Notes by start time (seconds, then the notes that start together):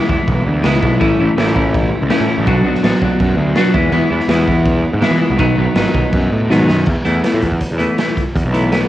Already playing: E3
0.08 E2 G#3 B3 E4, kick
0.28 B1, kick, crash
0.47 D2
0.62 C#2 E3 G#3 B3 E4, snare, crash
0.81 B1 G#3 B3 E4, kick
0.99 A1 A2 E3 A3 C#4 E4, kick, crash
1.20 A1 A3 C#4 E4
1.37 A1 E3 A3 C#4 E4, snare, crash
1.55 A3 C#4 E4, kick
1.74 kick, crash
2.02 C#2
2.08 A2 E3 A3 C#4 E4, snare, crash
2.20 A2
2.28 A3 C#4 E4
2.38 A1
2.46 B1 B2 F#3 B3 D4 F#4, kick, crash
2.64 B1 B3 D4 F#4
2.75 snare
2.82 A1 F#3 B3 D4 F#4, snare, crash
2.93 snare
3.01 B1 B3 D4 F#4, kick
3.20 F#2, kick, crash
3.37 D2
3.55 B2 F#3 B3 D4 F#4, snare, crash
3.73 E2 E3 G#3 B3 E4, kick
3.91 E2 E3 G#3 B3 E4, crash
4.10 E2 G#3 B3 E4
4.20 snare
4.28 E2 E3 G#3 B3 E4, snare, crash
4.48 G#3 B3 E4, kick
4.65 kick, crash
4.93 G#2
5.01 E3 G#3 B3 E4, snare, crash
5.10 E3
5.20 G#3 B3 E4
5.30 C2
5.37 B1 B2 D#3 F#3 B3 D#4, kick, crash
5.56 B1 F#3 B3 D#4
5.75 G#1 D#3 F#3 B3 D#4, snare, crash
5.86 snare
5.92 B1 F#3 B3 D#4, kick
6.12 F#2, kick, crash
6.32 A2
6.49 G#2 B2 D#3 F#3 B3 D#4, snare
6.68 F#2 F#3 B3 D#4, snare
6.86 E2, kick, crash
7.05 E2 E3 A3 B3 E4, closed hi-hat
7.23 E3 A3 B3 E4, snare, closed hi-hat
7.33 A2
7.42 E2, kick, closed hi-hat
7.52 kick
7.61 kick, closed hi-hat
7.71 E2
7.78 E3 A3 B3 E4, closed hi-hat
7.98 E3 A3 B3 E4, snare, closed hi-hat
8.17 kick, closed hi-hat
8.36 E2, kick, closed hi-hat
8.45 B1
8.53 E3 A3 B3 E4, closed hi-hat
8.72 E3 A3 B3 E4, snare, closed hi-hat